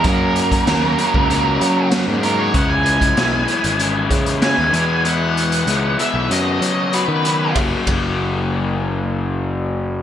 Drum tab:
RD |----------------|----------------|----------------|x-x-------------|
HH |x-xxx-x-x-x-x-x-|x-xxx-xxx-xxx-x-|x-xxx-x-x-x-x-x-|----------------|
SD |----o-------o---|----o-------o---|----------------|----------------|
BD |o--o---o--------|o--o------o-----|----------------|o-o-------------|